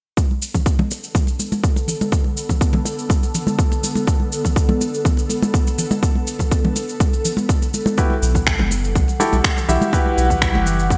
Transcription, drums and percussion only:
0.17 kick, muted conga, shaker
0.31 high conga
0.42 shaker
0.54 kick, muted conga, low conga, shaker
0.66 kick, shaker
0.79 high conga, low conga
0.91 muted conga, shaker
1.04 shaker
1.15 kick, high conga, low conga, shaker
1.27 muted conga, shaker
1.39 high conga, shaker
1.52 high conga, shaker
1.64 kick, shaker
1.76 muted conga, shaker
1.88 low conga, shaker
2.01 high conga, shaker
2.12 kick, muted conga, shaker
2.24 high conga
2.37 shaker
2.49 kick, muted conga, low conga, shaker
2.61 kick, shaker
2.73 high conga, low conga
2.85 muted conga, shaker
2.99 shaker
3.09 kick, high conga, shaker
3.23 muted conga, shaker
3.35 low conga, shaker
3.47 high conga, shaker
3.59 kick, shaker
3.72 muted conga, shaker
3.84 high conga, shaker
3.95 high conga, shaker
4.07 kick, muted conga, shaker
4.20 high conga
4.32 shaker
4.44 kick, muted conga, low conga, shaker
4.56 kick, shaker
4.69 high conga, low conga
4.81 muted conga, shaker
4.94 shaker
5.05 kick, high conga, low conga, shaker
5.17 muted conga, shaker
5.29 high conga, shaker
5.42 high conga, shaker
5.54 kick, shaker
5.67 muted conga, shaker
5.78 low conga, shaker
5.91 high conga, shaker
6.03 kick, muted conga, shaker
6.15 high conga
6.27 shaker
6.39 kick, muted conga, low conga, shaker
6.51 kick, shaker
6.65 high conga, low conga
6.76 muted conga, shaker
6.89 shaker
7.00 kick, high conga, shaker
7.13 muted conga, shaker
7.25 low conga, shaker
7.37 high conga, shaker
7.49 kick, shaker
7.62 muted conga, shaker
7.74 high conga, shaker
7.86 high conga, shaker
7.98 kick, muted conga, shaker
8.10 high conga
8.23 shaker
8.35 kick, muted conga, low conga, shaker
8.47 finger snap, kick, shaker
8.59 high conga, low conga
8.71 muted conga, shaker
8.84 shaker
8.95 kick, high conga, low conga, shaker
9.08 muted conga, shaker
9.20 high conga, shaker
9.33 high conga, shaker
9.44 finger snap, kick, shaker
9.58 muted conga, shaker
9.69 low conga, shaker
9.81 high conga, shaker
9.93 kick, muted conga, shaker
10.06 high conga
10.18 shaker
10.30 kick, muted conga, low conga, shaker
10.42 finger snap, kick, shaker
10.55 high conga, low conga
10.66 muted conga, shaker
10.80 shaker
10.90 kick, high conga, shaker

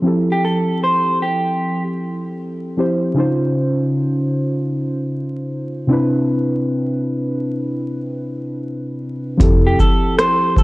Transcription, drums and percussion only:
9.40 kick, closed hi-hat
9.79 kick, shaker
10.19 cross-stick, closed hi-hat
10.57 kick, shaker

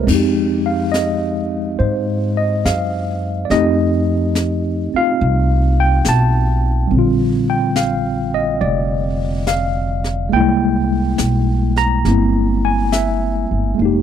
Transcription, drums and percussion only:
0.07 brush sweep, kick, snare, crash
0.94 snare, hi-hat pedal
1.79 brush sweep
2.65 snare, hi-hat pedal
3.50 brush sweep, snare
4.35 snare, hi-hat pedal
5.20 brush sweep
6.05 snare, hi-hat pedal
6.90 brush sweep
7.76 snare, hi-hat pedal
8.62 brush sweep
9.47 snare, hi-hat pedal
10.04 snare
10.33 brush sweep
11.18 snare, hi-hat pedal
11.76 snare
12.05 brush sweep, snare
12.92 snare, hi-hat pedal
13.79 brush sweep

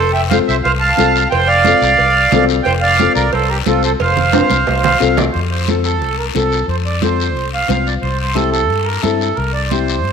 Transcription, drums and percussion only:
0.31 high conga, short guiro
0.49 short guiro
0.65 cowbell, high conga, long guiro
0.99 high conga, short guiro
1.16 short guiro
1.32 cowbell, high conga, long guiro
1.65 high conga, short guiro
1.83 short guiro
1.98 cowbell, high conga, long guiro
2.32 high conga, low conga, low timbale, short guiro
2.49 short guiro
2.65 cowbell, high conga, long guiro
2.99 high conga, short guiro
3.15 short guiro
3.33 cowbell, high conga, long guiro
3.66 high conga, short guiro
3.83 short guiro
4.00 cowbell, high conga, long guiro
4.17 low conga
4.33 high conga, high timbale, short guiro
4.50 high conga, short guiro
4.67 cowbell, low timbale, long guiro
4.84 low conga, low timbale
5.01 short guiro
5.17 low conga, low timbale, short guiro
5.34 high conga, long guiro
5.68 high conga, short guiro
5.84 short guiro
6.02 high conga, long guiro
6.36 high conga, short guiro
6.52 short guiro
6.69 high conga, long guiro
7.02 high conga, short guiro
7.20 short guiro
7.36 high conga, long guiro
7.70 high conga, short guiro
7.87 short guiro
8.03 high conga, long guiro
8.36 high conga, short guiro
8.54 short guiro
8.70 high conga, long guiro
9.04 high conga, short guiro
9.21 short guiro
9.37 high conga, long guiro
9.71 high conga, short guiro
9.88 short guiro
10.04 high conga, long guiro

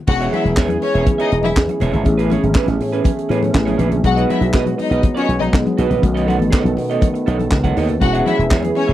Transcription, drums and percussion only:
0.07 kick, crash, muted conga
0.21 closed hi-hat
0.33 closed hi-hat, high conga
0.45 closed hi-hat, high conga
0.57 kick, snare, clap
0.68 closed hi-hat, high conga
0.82 open hi-hat, muted conga
0.95 closed hi-hat
1.06 kick, closed hi-hat, muted conga, high conga, low conga
1.19 closed hi-hat
1.32 closed hi-hat
1.43 closed hi-hat, high conga
1.56 kick, snare, clap
1.68 closed hi-hat, high conga
1.80 closed hi-hat, muted conga, low conga
1.92 closed hi-hat, low conga
2.05 kick, closed hi-hat, muted conga
2.19 closed hi-hat
2.30 closed hi-hat, muted conga, high conga
2.43 closed hi-hat, high conga
2.54 kick, snare, clap, muted conga
2.66 snare, closed hi-hat, high conga
2.80 open hi-hat
2.93 closed hi-hat
3.04 kick, closed hi-hat, muted conga, high conga, low conga
3.19 closed hi-hat
3.29 closed hi-hat, muted conga
3.43 closed hi-hat, high conga
3.55 kick, snare, clap
3.67 closed hi-hat, high conga
3.79 closed hi-hat, muted conga, low conga
3.91 closed hi-hat, low conga
4.04 kick, closed hi-hat, muted conga
4.17 closed hi-hat
4.30 closed hi-hat, high conga
4.42 closed hi-hat, high conga
4.53 kick, snare, clap, muted conga
4.66 closed hi-hat, high conga
4.79 open hi-hat, muted conga
4.92 closed hi-hat
5.03 kick, closed hi-hat, muted conga, high conga, low conga
5.17 closed hi-hat
5.29 closed hi-hat
5.40 closed hi-hat, high conga
5.53 kick, snare, clap
5.66 closed hi-hat, high conga
5.78 closed hi-hat, muted conga, low conga
5.91 closed hi-hat, low conga
6.03 kick, closed hi-hat, muted conga
6.17 closed hi-hat
6.28 closed hi-hat, muted conga, high conga
6.40 closed hi-hat, high conga
6.53 kick, snare, clap
6.64 closed hi-hat, high conga
6.77 open hi-hat, muted conga
6.90 closed hi-hat
7.01 kick, closed hi-hat, high conga, low conga
7.15 closed hi-hat
7.27 closed hi-hat, muted conga
7.40 closed hi-hat, high conga
7.51 kick, snare, clap, muted conga
7.64 kick, closed hi-hat, high conga
7.77 open hi-hat, low conga
7.88 closed hi-hat, low conga
8.01 kick, closed hi-hat, muted conga
8.14 closed hi-hat
8.26 closed hi-hat, muted conga, high conga
8.38 closed hi-hat, high conga
8.51 kick, snare, clap, muted conga
8.63 closed hi-hat, high conga
8.75 open hi-hat, muted conga
8.89 closed hi-hat

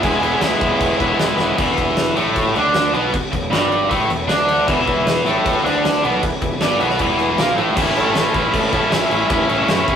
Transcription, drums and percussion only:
0.03 kick, crash
0.23 crash
0.41 snare, crash
0.61 kick, crash
0.80 kick, crash
1.00 kick, crash
1.19 snare, crash
1.39 snare
1.58 kick, crash
1.78 kick, crash
1.97 snare, crash
2.17 crash
2.36 kick, crash
2.55 crash
2.74 snare, crash
2.94 crash
3.14 kick, crash
3.33 kick, crash
3.53 snare, crash
3.72 crash
3.91 kick, crash
4.10 crash
4.29 snare, crash
4.49 crash
4.68 kick, crash
4.87 kick, crash
5.07 snare, crash
5.26 snare, crash
5.46 kick, crash
5.66 crash
5.85 snare, crash
6.05 crash
6.23 kick, crash
6.41 kick, crash
6.61 snare, crash
6.80 crash
6.90 snare
6.99 kick, crash
7.19 crash
7.38 snare, crash
7.58 crash
7.77 kick, crash
7.96 crash
8.15 snare, crash
8.34 kick, crash
8.54 kick, crash
8.73 kick, crash
8.92 snare, crash
9.11 crash
9.30 kick, crash
9.49 crash
9.68 snare, crash
9.88 kick, crash

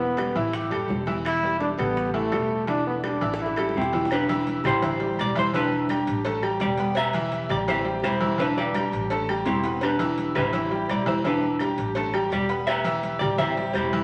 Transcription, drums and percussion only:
0.01 high conga
0.17 high bongo, high conga, high timbale, low timbale, claves
0.35 high bongo, high conga
0.53 high bongo, high conga, high timbale
0.71 high conga, high timbale, claves
0.89 high bongo, low bongo, high conga, low timbale
1.07 high bongo, high conga, high timbale
1.25 high bongo, high conga, high timbale, claves
1.43 high bongo, high conga
1.60 high bongo, high conga, high timbale, low timbale
1.78 high bongo, high conga, low conga, high timbale, claves
1.97 high bongo, high conga
2.14 high conga, high timbale
2.32 high bongo, low bongo, high conga, high timbale, low timbale, claves
2.51 high bongo, high conga
2.67 high bongo, high conga, high timbale
2.86 high bongo, high conga
3.04 high bongo, high conga, high timbale, low timbale, claves
3.22 high bongo, high conga
3.34 high bongo
3.39 high conga, high timbale
3.46 high bongo
3.56 high bongo, high conga, high timbale, claves
3.69 low bongo
3.74 high conga, low timbale
3.81 low bongo
3.92 low bongo, high conga, high timbale
4.05 low bongo
4.10 cowbell, high conga, low agogo, claves
4.28 cowbell, high conga, low agogo
4.47 cowbell, high conga
4.64 high conga, low conga, low agogo, claves
4.82 cowbell, high conga, low conga, low agogo
5.01 high conga
5.19 cowbell, high conga, low timbale, low agogo, claves
5.36 high conga, low agogo
5.54 cowbell, high conga
5.72 high conga, low agogo
5.89 cowbell, high conga, low agogo, claves
6.07 cowbell
6.25 cowbell, high conga, low agogo
6.43 high conga, low agogo, claves
6.60 cowbell, high conga, low timbale, low agogo
6.78 cowbell, high conga
6.95 cowbell, low agogo, claves
7.13 cowbell, high conga, low agogo
7.32 cowbell, high conga
7.50 high conga, low conga, low agogo, claves
7.68 cowbell, high conga, low agogo
7.86 high conga
8.03 cowbell, high conga, low timbale, low agogo, claves
8.21 high conga, low agogo
8.40 cowbell, high conga
8.57 high conga, low agogo
8.74 cowbell, high conga, low agogo, claves
8.93 cowbell
9.10 cowbell, high conga, low agogo
9.29 high conga, low agogo, claves
9.46 cowbell, high conga, low timbale, low agogo
9.63 cowbell
9.81 cowbell, high conga, low agogo, claves
10.00 cowbell, low agogo
10.18 cowbell, high conga
10.35 high conga, low conga, low agogo, claves
10.53 cowbell, high conga, low agogo
10.72 high conga
10.89 cowbell, high conga, low timbale, low agogo, claves
11.07 high conga, low agogo
11.25 cowbell, high conga
11.42 high conga, low agogo
11.59 cowbell, high conga, low agogo, claves
11.78 cowbell
11.95 cowbell, high conga, low agogo
12.13 high conga, low agogo, claves
12.31 cowbell, high conga, low agogo
12.49 cowbell
12.67 cowbell, high conga, low agogo, claves
12.85 cowbell, high conga, low agogo
13.03 cowbell, high conga
13.21 high conga, low conga, low agogo, claves
13.39 cowbell, high conga, low conga, low agogo
13.57 high conga
13.75 cowbell, high conga, low timbale, low agogo, claves
13.93 high conga, low agogo

